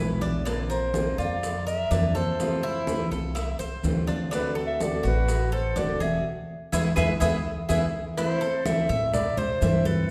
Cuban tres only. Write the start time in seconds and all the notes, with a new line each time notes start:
Already playing: B4
0.21 D4
0.45 D4
0.70 A#4
1.18 F4
1.67 A#4
1.91 D4
2.15 A4
2.63 E4
3.11 A4
3.35 E5
3.59 C5
4.07 D4
4.31 D4
4.55 A4
5.03 F#4
5.52 A4
5.76 D4
6.00 G#4
6.72 E4 G#4 B4
6.96 E4 G#4 B4
7.20 E4 G#4 B4
7.69 E4 G#4 B4
8.18 E4
8.41 A4
8.89 E5
9.37 C5
9.62 E5
9.85 A4